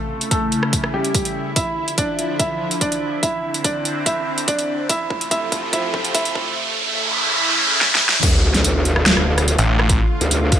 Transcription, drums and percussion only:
0.21 closed hi-hat
0.31 kick, closed hi-hat
0.52 closed hi-hat
0.63 cross-stick
0.73 kick, closed hi-hat
0.84 cross-stick
1.05 closed hi-hat
1.15 kick, closed hi-hat
1.25 closed hi-hat
1.56 kick, closed hi-hat
1.88 closed hi-hat
1.98 kick, closed hi-hat
2.19 closed hi-hat
2.40 kick, closed hi-hat
2.71 closed hi-hat
2.81 kick, closed hi-hat
2.92 closed hi-hat
3.23 kick, closed hi-hat
3.54 closed hi-hat
3.64 kick, closed hi-hat
3.85 closed hi-hat
4.06 kick, closed hi-hat
4.38 closed hi-hat
4.48 kick, closed hi-hat
4.59 closed hi-hat
4.89 kick, closed hi-hat
5.10 kick
5.21 closed hi-hat
5.31 kick, closed hi-hat
5.52 kick, closed hi-hat
5.73 kick, closed hi-hat
5.94 kick
6.05 closed hi-hat
6.15 kick, closed hi-hat
6.25 closed hi-hat
6.35 kick
7.81 snare
7.95 snare
8.09 snare
8.23 kick, closed hi-hat, crash
8.54 snare, closed hi-hat
8.64 closed hi-hat
8.85 closed hi-hat
8.96 cross-stick
9.06 snare, closed hi-hat
9.17 cross-stick
9.38 cross-stick, closed hi-hat
9.48 closed hi-hat
9.59 closed hi-hat
9.79 cross-stick
9.89 kick, closed hi-hat
10.21 closed hi-hat
10.31 closed hi-hat
10.52 kick, closed hi-hat

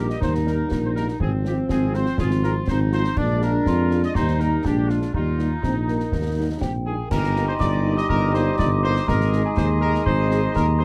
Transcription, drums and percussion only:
0.10 snare
0.22 concert bass drum, snare
0.35 snare
0.47 snare
0.71 concert bass drum, snare
0.96 snare
1.08 snare
1.20 concert bass drum
1.45 snare
1.69 concert bass drum, snare
1.94 snare
2.06 snare
2.18 concert bass drum, snare
2.31 snare
2.43 snare
2.68 concert bass drum, snare
2.92 snare
3.04 snare
3.17 concert bass drum, crash
3.42 snare
3.66 concert bass drum, snare
3.91 snare
4.03 snare
4.15 concert bass drum, snare
4.28 snare
4.40 snare
4.65 concert bass drum, snare
4.89 snare
5.01 snare
5.14 concert bass drum
5.39 snare
5.63 concert bass drum, snare
5.88 snare
6.00 snare
6.12 concert bass drum, snare
6.61 concert bass drum, snare
7.11 concert bass drum, snare, crash
7.23 snare
7.36 snare
7.60 concert bass drum, snare
7.97 snare
8.09 concert bass drum
8.34 snare
8.59 concert bass drum, snare
8.96 snare
9.08 concert bass drum, snare
9.21 snare
9.33 snare
9.57 concert bass drum, snare
9.94 snare
10.06 concert bass drum
10.31 snare
10.56 concert bass drum, snare

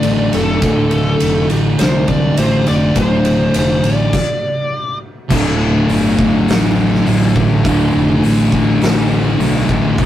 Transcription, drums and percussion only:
0.03 ride
0.33 snare, ride
0.62 kick, ride
0.91 ride
1.20 ride
1.50 ride
1.79 snare, ride
2.08 kick, ride
2.37 ride
2.66 snare, ride
2.96 kick, ride
3.25 ride
3.54 ride
3.84 ride
4.13 kick, crash
5.30 kick, crash
5.89 open hi-hat
6.19 kick
6.48 snare, open hi-hat
6.95 snare
7.06 open hi-hat
7.36 kick
7.65 kick, open hi-hat
8.23 open hi-hat
8.52 kick
8.81 snare, open hi-hat
9.40 open hi-hat
9.69 kick
9.98 kick, open hi-hat

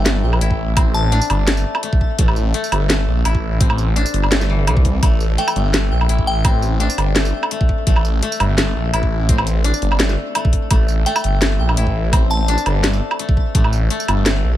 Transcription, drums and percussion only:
0.06 snare, closed hi-hat
0.33 low woodblock
0.41 closed hi-hat
0.51 kick
0.77 kick, closed hi-hat, low woodblock
0.94 tambourine
1.12 closed hi-hat
1.22 tambourine
1.30 closed hi-hat, low woodblock
1.48 snare, closed hi-hat
1.57 tambourine
1.75 low woodblock
1.83 closed hi-hat
1.93 kick
2.01 kick
2.19 kick, closed hi-hat
2.28 low woodblock
2.36 tambourine
2.54 closed hi-hat
2.64 tambourine
2.72 closed hi-hat, low woodblock
2.90 snare, closed hi-hat
3.25 closed hi-hat, low woodblock
3.35 kick
3.61 kick, closed hi-hat
3.70 low woodblock
3.78 tambourine
3.96 closed hi-hat
4.06 tambourine
4.14 closed hi-hat
4.23 low woodblock
4.32 snare, closed hi-hat
4.41 snare, tambourine
4.67 closed hi-hat, low woodblock
4.77 kick
4.85 kick, closed hi-hat
5.03 kick, closed hi-hat, low woodblock
5.20 tambourine
5.38 closed hi-hat
5.48 tambourine, low woodblock
5.56 closed hi-hat
5.74 snare, closed hi-hat
6.01 low woodblock
6.09 closed hi-hat
6.19 kick
6.45 kick, closed hi-hat, low woodblock
6.62 tambourine
6.80 closed hi-hat
6.90 tambourine
6.98 closed hi-hat, low woodblock
7.16 snare, closed hi-hat
7.25 tambourine
7.43 low woodblock
7.51 closed hi-hat
7.61 kick
7.69 kick
7.87 kick, closed hi-hat
7.96 low woodblock
8.05 tambourine
8.23 closed hi-hat
8.32 tambourine
8.40 closed hi-hat, low woodblock
8.58 snare, closed hi-hat
8.94 closed hi-hat, low woodblock
9.03 kick
9.29 kick, closed hi-hat
9.38 low woodblock
9.47 closed hi-hat, tambourine
9.64 closed hi-hat
9.74 tambourine
9.82 closed hi-hat
9.92 low woodblock
10.00 snare, closed hi-hat
10.09 snare, tambourine
10.35 closed hi-hat, low woodblock
10.45 kick
10.53 kick, closed hi-hat
10.71 kick, closed hi-hat, low woodblock
10.88 tambourine
11.06 closed hi-hat
11.16 tambourine, low woodblock
11.24 closed hi-hat
11.42 snare, closed hi-hat
11.69 low woodblock
11.77 closed hi-hat
11.87 kick
12.13 kick, closed hi-hat, low woodblock
12.30 tambourine
12.48 closed hi-hat
12.58 tambourine
12.66 closed hi-hat, low woodblock
12.84 snare, closed hi-hat
12.93 tambourine
13.11 low woodblock
13.19 closed hi-hat
13.29 kick
13.37 kick
13.55 kick, closed hi-hat
13.64 low woodblock
13.73 tambourine
13.90 closed hi-hat
14.00 tambourine
14.08 closed hi-hat, low woodblock
14.26 snare, closed hi-hat

